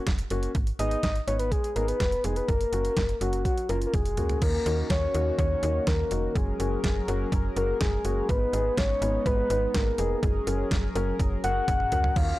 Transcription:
0.07 fm bass F1, kick, snare, closed hi-hat
0.19 closed hi-hat
0.30 fm bass F#1, grand piano A#3 C#4 F#4, closed hi-hat
0.43 closed hi-hat
0.55 fm bass G#1, kick, closed hi-hat
0.67 closed hi-hat
0.79 fm bass G#1, grand piano B3 D#4 G#4, soft synth lead D#5, closed hi-hat
0.91 closed hi-hat
1.03 fm bass G#1, soft synth lead D#5, kick, snare, closed hi-hat
1.15 closed hi-hat
1.27 fm bass G#1, grand piano B3 D#4 B4, soft synth lead C#5, closed hi-hat
1.39 soft synth lead B4, closed hi-hat
1.51 soft synth lead G#4, kick, closed hi-hat
1.64 closed hi-hat
1.76 fm bass G#1, grand piano B3 D#4 G#4, soft synth lead A#4, closed hi-hat
1.87 soft synth lead B4, closed hi-hat
2.00 fm bass F1, kick, snare, closed hi-hat
2.12 closed hi-hat
2.24 fm bass F1, grand piano B3 D#4 G#4, soft synth lead G#4, closed hi-hat
2.36 soft synth lead B4, closed hi-hat
2.48 fm bass F#1, soft synth lead A#4, kick, closed hi-hat
2.61 closed hi-hat
2.73 fm bass F#1, grand piano A#3 C#4 F#4, closed hi-hat
2.85 closed hi-hat
2.97 fm bass F#1, kick, snare, closed hi-hat
3.09 closed hi-hat
3.21 fm bass F#1, grand piano A#3 C#4 F#4, soft synth lead F#4, closed hi-hat
3.33 closed hi-hat
3.45 soft synth lead F#4, kick, closed hi-hat
3.58 closed hi-hat
3.69 fm bass F#1, grand piano A#3 C#4 F4, soft synth lead A#4, closed hi-hat
3.82 closed hi-hat
3.86 soft synth lead A#4
3.94 fm bass F1, soft synth lead G#4, kick, closed hi-hat, high tom
4.05 closed hi-hat
4.17 fm bass C#2, grand piano A#3 C#4 F#4, closed hi-hat, mid tom
4.29 closed hi-hat, floor tom
4.42 fm bass D#2, analog synth pad D#3 A#3 C#4 F#4, soft synth lead A#4, kick, closed hi-hat, crash
4.66 fm bass D#2, grand piano A#3 D#4 F#4, closed hi-hat
4.90 fm bass D#2, soft synth lead C#5, kick, snare, closed hi-hat
5.14 fm bass D#2, grand piano A#3 D#4 F#4, closed hi-hat
5.39 fm bass D#2, soft synth lead C#5, kick, closed hi-hat
5.63 fm bass D#2, grand piano A#3 D#4 F#4, closed hi-hat
5.87 fm bass D#2, soft synth lead A#4, kick, snare, closed hi-hat
6.11 fm bass F1, grand piano A#3 D#4 F#4, closed hi-hat
6.35 fm bass F#1, analog synth pad F#3 C#4 G#4 A#4, soft synth lead G#4, kick, closed hi-hat
6.60 fm bass F#1, grand piano A#3 C#4 F#4, closed hi-hat
6.84 fm bass F#1, kick, snare, closed hi-hat
7.08 fm bass F#1, grand piano A#3 C#4 F#4, closed hi-hat
7.32 fm bass F#1, kick, closed hi-hat
7.56 fm bass F#1, grand piano A#3 C#4 F#4, soft synth lead A#4, closed hi-hat
7.81 fm bass F#1, soft synth lead G#4, kick, snare, closed hi-hat
8.05 fm bass F#1, grand piano A#3 C#4 F#4, closed hi-hat
8.29 fm bass G#1, analog synth pad G#3 B3 D#4, soft synth lead B4, kick, closed hi-hat
8.53 fm bass G#1, grand piano B3 D#4 G#4, closed hi-hat
8.77 fm bass G#1, soft synth lead C#5, kick, snare, closed hi-hat
9.02 fm bass G#1, grand piano B3 D#4 B4, closed hi-hat
9.26 fm bass G#1, soft synth lead B4, kick, closed hi-hat
9.50 fm bass G#1, grand piano B3 D#4 B4, closed hi-hat
9.74 fm bass G#1, soft synth lead A#4, kick, snare, closed hi-hat
9.98 fm bass F1, grand piano B3 D#4 G#4, closed hi-hat
10.23 fm bass F#1, analog synth pad F#3 C#4 G#4 A#4, soft synth lead G#4, kick, closed hi-hat
10.47 fm bass F#1, grand piano C#4 F#4 A#4, closed hi-hat
10.71 fm bass F#1, kick, snare, closed hi-hat
10.95 fm bass F#1, grand piano C#4 F#4 A#4, closed hi-hat
11.20 fm bass F#1, kick, closed hi-hat
11.44 fm bass F#1, grand piano C#4 F#4 A#4, soft synth lead F#5, closed hi-hat
11.68 fm bass F#1, soft synth lead F#5, kick, closed hi-hat, high tom
11.80 mid tom
11.92 fm bass C#2, grand piano C#4 F#4 A#4, closed hi-hat, mid tom
12.04 floor tom
12.16 fm bass D#2, analog synth pad D#3 A#3 F#4, soft synth lead F5, kick, crash

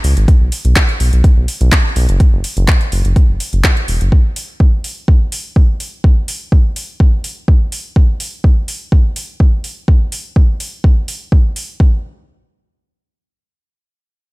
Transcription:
0.04 analog synth bass C#2, open hi-hat
0.17 analog synth bass G#1, closed hi-hat
0.28 kick, closed hi-hat
0.41 analog synth bass B1
0.52 open hi-hat
0.65 analog synth bass B1, closed hi-hat
0.76 kick, clap, closed hi-hat
0.89 closed hi-hat
1.00 analog synth bass B1, open hi-hat
1.13 analog synth bass B1, closed hi-hat
1.24 kick, closed hi-hat
1.37 analog synth bass B1
1.48 open hi-hat
1.61 analog synth bass B1, closed hi-hat
1.72 kick, clap, closed hi-hat
1.96 analog synth bass B1, open hi-hat
2.09 analog synth bass F#1, closed hi-hat
2.20 kick, closed hi-hat
2.33 analog synth bass F#1
2.44 open hi-hat
2.57 analog synth bass F#1, closed hi-hat
2.68 kick, clap, closed hi-hat
2.81 closed hi-hat
2.92 analog synth bass F#1, open hi-hat
3.05 analog synth bass F#1, closed hi-hat
3.16 kick, closed hi-hat
3.29 analog synth bass F#1
3.40 open hi-hat
3.53 analog synth bass F#1, closed hi-hat
3.64 kick, clap, closed hi-hat
3.77 closed hi-hat
3.88 analog synth bass E1, open hi-hat
4.01 analog synth bass F#1, closed hi-hat
4.12 kick
4.36 open hi-hat
4.60 kick
4.84 open hi-hat
5.08 kick
5.32 open hi-hat
5.56 kick
5.80 open hi-hat
6.04 kick
6.28 open hi-hat
6.52 kick
6.76 open hi-hat
7.00 kick
7.24 open hi-hat
7.48 kick
7.72 open hi-hat
7.96 kick
8.20 open hi-hat
8.44 kick
8.68 open hi-hat
8.92 kick
9.16 open hi-hat
9.40 kick
9.64 open hi-hat
9.88 kick
10.12 open hi-hat
10.36 kick
10.60 open hi-hat
10.84 kick
11.08 open hi-hat
11.32 kick
11.56 open hi-hat
11.80 kick

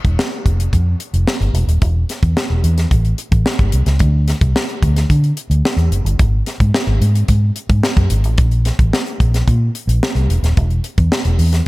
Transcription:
0.04 fingered electric bass E1, kick, closed hi-hat
0.19 snare
0.46 fingered electric bass F1, kick, closed hi-hat
0.60 closed hi-hat
0.73 fingered electric bass F2, kick, closed hi-hat
1.00 closed hi-hat
1.13 fingered electric bass F1, closed hi-hat
1.27 snare
1.40 fingered electric bass G1, closed hi-hat
1.54 fingered electric bass E1, closed hi-hat
1.67 fingered electric bass D#1, closed hi-hat
1.82 fingered electric bass E1, kick, closed hi-hat
2.09 snare, closed hi-hat
2.23 fingered electric bass E2, kick, closed hi-hat
2.37 snare
2.50 fingered electric bass E1
2.64 fingered electric bass E2, closed hi-hat
2.78 snare, closed hi-hat
2.91 fingered electric bass A1, kick, closed hi-hat
3.05 closed hi-hat
3.18 closed hi-hat
3.31 fingered electric bass A1, kick, closed hi-hat
3.46 snare
3.59 fingered electric bass G1, kick, closed hi-hat
3.72 fingered electric bass C2, closed hi-hat
3.86 fingered electric bass C#2, snare, closed hi-hat
3.99 fingered electric bass D2, kick, closed hi-hat
4.28 snare, closed hi-hat
4.41 fingered electric bass C2, kick, closed hi-hat
4.56 snare
4.69 closed hi-hat
4.82 fingered electric bass D2, kick, closed hi-hat
4.96 snare, closed hi-hat
5.10 fingered electric bass D3, kick, closed hi-hat
5.24 closed hi-hat
5.37 closed hi-hat
5.50 fingered electric bass D2, closed hi-hat
5.65 snare
5.76 fingered electric bass E2, closed hi-hat
5.90 fingered electric bass F#1, closed hi-hat
6.05 fingered electric bass G1, closed hi-hat
6.19 fingered electric bass G#1, kick, closed hi-hat
6.46 snare, closed hi-hat
6.60 fingered electric bass G#2, kick, closed hi-hat
6.74 snare
6.87 fingered electric bass G#1
7.01 fingered electric bass G#2, closed hi-hat
7.16 closed hi-hat
7.28 fingered electric bass G#2, kick, closed hi-hat
7.56 closed hi-hat
7.69 fingered electric bass G#2, kick, closed hi-hat
7.83 snare
7.96 fingered electric bass F#2, kick, closed hi-hat
8.10 fingered electric bass G#1, closed hi-hat
8.24 fingered electric bass A1, closed hi-hat
8.38 fingered electric bass A#1, kick, closed hi-hat
8.51 closed hi-hat
8.65 snare, closed hi-hat
8.79 fingered electric bass A1, kick, closed hi-hat
8.93 snare
9.06 closed hi-hat
9.20 fingered electric bass A#1, kick, closed hi-hat
9.34 snare, closed hi-hat
9.48 fingered electric bass A#2, kick, closed hi-hat
9.75 closed hi-hat
9.87 fingered electric bass A#1, closed hi-hat
10.03 snare
10.15 fingered electric bass C2, closed hi-hat
10.29 fingered electric bass E1, closed hi-hat
10.42 fingered electric bass D#1, snare, closed hi-hat
10.57 fingered electric bass E1, kick, closed hi-hat
10.70 closed hi-hat
10.84 closed hi-hat
10.98 fingered electric bass E2, kick, closed hi-hat
11.12 snare
11.25 fingered electric bass E1, closed hi-hat
11.39 fingered electric bass E2, open hi-hat
11.53 snare, closed hi-hat

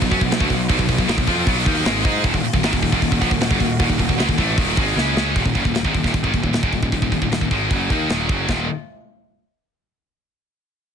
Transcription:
Already playing: string section F#3 B3 F4
0.01 picked electric bass B1, distorted electric guitar B2 F#3, kick
0.10 picked electric bass F#2, distorted electric guitar F#3 C#4, kick, open hi-hat
0.20 picked electric bass B1, distorted electric guitar B2 F#3, kick
0.30 picked electric bass B1, distorted electric guitar B2 F#3, snare, open hi-hat
0.39 picked electric bass D2, distorted electric guitar D3 A3, kick
0.49 picked electric bass B1, distorted electric guitar B2 F#3, kick, open hi-hat
0.68 picked electric bass B1, distorted electric guitar B2 F#3, kick, open hi-hat
0.78 picked electric bass B1, distorted electric guitar B2 F#3, kick
0.88 picked electric bass B1, distorted electric guitar B2 F#3, kick, open hi-hat
0.98 picked electric bass B1, distorted electric guitar B2 F#3, kick
1.07 picked electric bass G#1, distorted electric guitar G#2 D#3, snare, open hi-hat
1.17 picked electric bass B1, distorted electric guitar B2 F#3, kick
1.27 picked electric bass F2, distorted electric guitar F3 C4 F4, kick, open hi-hat
1.46 picked electric bass B1, distorted electric guitar B2 F#3 B3, kick, open hi-hat
1.65 picked electric bass D#2, distorted electric guitar D#3 A#3 D#4, kick, open hi-hat
1.85 picked electric bass G#1, distorted electric guitar G#2 D#3 G#3, snare, open hi-hat
2.05 picked electric bass G#2, distorted electric guitar G#3 D#4 G#4, kick, open hi-hat
2.24 picked electric bass D#1, distorted electric guitar D#2 A#2, string section D#3 A#3 F#4, kick, open hi-hat
2.34 picked electric bass D#1, distorted electric guitar D#2 A#2, kick
2.43 muted picked electric bass stroke, muted distorted electric guitar stroke, open hi-hat
2.54 picked electric bass D#1, distorted electric guitar D#2 A#2, kick
2.62 picked electric bass G#1, distorted electric guitar G#2 D#3, snare, open hi-hat
2.73 picked electric bass D#1, distorted electric guitar D#2 A#2, kick
2.82 picked electric bass D#1, distorted electric guitar D#2 A#2, kick, open hi-hat
2.92 picked electric bass D#1, distorted electric guitar D#2 A#2, kick
3.02 picked electric bass D#1, distorted electric guitar D#2 A#2, kick, open hi-hat
3.12 picked electric bass D#1, distorted electric guitar D#2 A#2, kick
3.21 picked electric bass A#1, distorted electric guitar A#2 F3, kick, open hi-hat
3.31 picked electric bass D#1, distorted electric guitar D#2 A#2, kick
3.39 picked electric bass D#1, distorted electric guitar D#2 A#2, snare, open hi-hat
3.51 picked electric bass F#1, distorted electric guitar F#2 C#3, kick
3.60 picked electric bass D#1, distorted electric guitar D#2 A#2, kick, open hi-hat
3.79 picked electric bass D#1, distorted electric guitar D#2 A#2, kick, open hi-hat
3.89 picked electric bass D#1, distorted electric guitar D#2 A#2, kick
3.99 picked electric bass D#1, distorted electric guitar D#2 A#2, kick, open hi-hat
4.09 picked electric bass D#1, distorted electric guitar D#2 A#2, kick
4.18 picked electric bass C#2, distorted electric guitar C#3 G#3, snare, open hi-hat
4.29 picked electric bass D#1, distorted electric guitar D#2 A#2, kick
4.38 picked electric bass A1, distorted electric guitar A2 E3 A3, kick, open hi-hat
4.57 picked electric bass D#1, distorted electric guitar D#2 A#2 D#3, kick, open hi-hat
4.77 picked electric bass G#1, distorted electric guitar G#2 D#3 G#3, kick, open hi-hat
4.96 picked electric bass C#2, distorted electric guitar C#3 G#3 C#4, snare
5.16 picked electric bass C#2, distorted electric guitar C#3 G#3 C#4, snare
5.36 picked electric bass D#1, distorted electric guitar D#2 A#2, kick, open hi-hat
5.45 picked electric bass D#1, distorted electric guitar D#2 A#2, kick
5.55 picked electric bass F#1, distorted electric guitar F#2 C#3, kick, open hi-hat
5.65 picked electric bass D#1, distorted electric guitar D#2 A#2, kick
5.75 picked electric bass D#1, distorted electric guitar D#2 A#2, snare, open hi-hat
5.84 picked electric bass G#1, distorted electric guitar G#2 D#3, kick
5.95 picked electric bass D#1, distorted electric guitar D#2 A#2, kick, open hi-hat
6.04 picked electric bass D#1, distorted electric guitar D#2 A#2, kick, snare
6.14 picked electric bass D#1, distorted electric guitar D#2 A#2, kick, open hi-hat
6.24 picked electric bass G#1, distorted electric guitar G#2 D#3, kick
6.34 picked electric bass D#1, distorted electric guitar D#2 A#2, kick, open hi-hat
6.43 picked electric bass D#1, distorted electric guitar D#2 A#2, kick
6.53 picked electric bass D#1, distorted electric guitar D#2 A#2, snare, open hi-hat
6.63 picked electric bass D#1, distorted electric guitar D#2 A#2, kick
6.73 picked electric bass D#1, distorted electric guitar D#2 A#2, kick, open hi-hat
6.82 picked electric bass D#1, distorted electric guitar D#2 A#2, kick
6.92 picked electric bass D#1, distorted electric guitar D#2 A#2, kick, open hi-hat
7.02 picked electric bass D#1, distorted electric guitar D#2 A#2, kick
7.11 picked electric bass D#1, distorted electric guitar D#2 A#2, kick, open hi-hat
7.22 picked electric bass D#1, distorted electric guitar D#2 A#2, kick
7.30 picked electric bass D#1, distorted electric guitar D#2 A#2, snare, open hi-hat
7.41 picked electric bass D#1, distorted electric guitar D#2 A#2, kick
7.51 picked electric bass G#1, distorted electric guitar G#2 D#3 G#3, kick, open hi-hat
7.70 picked electric bass F#1, distorted electric guitar F#2 C#3 F#3, kick, open hi-hat
7.90 picked electric bass D#2, distorted electric guitar D#3 A#3 D#4, kick, open hi-hat
8.09 picked electric bass D#1, distorted electric guitar D#2 A#2 D#3, snare, open hi-hat
8.29 picked electric bass F#1, distorted electric guitar F#2 C#3 F#3, kick, open hi-hat
8.48 picked electric bass D#1, distorted electric guitar D#2 A#2 D#3, kick, snare, crash

